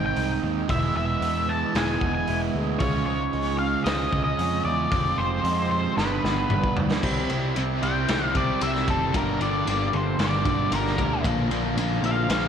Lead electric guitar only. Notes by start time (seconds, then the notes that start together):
0.06 G5
0.70 E5
0.97 E5
1.49 A5
1.77 G#5
2.15 G#5
2.79 C#5
3.06 C#5
3.59 F5
3.84 D#5
4.24 D#5
4.65 D5
5.18 C5
5.71 C5
5.98 B4
7.83 G5
8.26 F5
8.37 D5
8.63 E5
8.90 A4
9.16 A#4
9.42 D5
9.94 C5
10.21 D5
10.73 A#4
12.06 F5